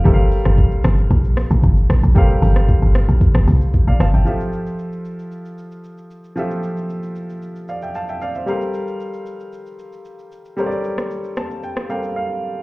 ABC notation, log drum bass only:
X:1
M:4/4
L:1/16
Q:1/4=114
K:Gdor
V:1 name="Log drum bass" clef=bass
G,,,3 G,,,3 G,,,2 B,,,3 B,,, G,,,2 B,,, B,,, | G,,,2 G,,,3 G,,,2 B,,, z G,,, C,, z2 B,,, G,,, G,,, | z16 | z16 |
z16 | z16 |]